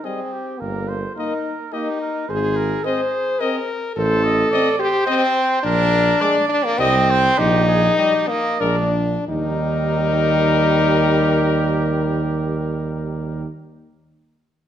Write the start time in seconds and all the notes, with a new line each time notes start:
0.04 G3 C4 G#4 D#5
0.33 G4
0.60 G1 A#3 A#4
0.88 C5
1.16 A#3 D#4 A#4 D#5
1.72 A#3 D#4 G4 D#5
2.01 A#4
2.29 G#1 G#4 C5
2.56 A#4
2.84 C4 G#4 C5 D#5
3.40 C4 A#4 D#5
3.96 A1 A4 C5
4.24 D#5
4.51 C4 D5 D#5
4.79 G4 C5
5.07 C4 D#5
5.63 A#1 D4 A#4
6.20 G#3 D5
6.49 D4
6.65 A#3
6.79 C2 G3 C4 D#5
7.10 C5
7.39 A#1 D#4 G4
7.67 G#4
7.97 G3 G4 D#5
8.27 A#3 D#5
8.60 A#1 G#3 D4 A#4 D5
9.27 D#2 G3 D#4 G4 A#4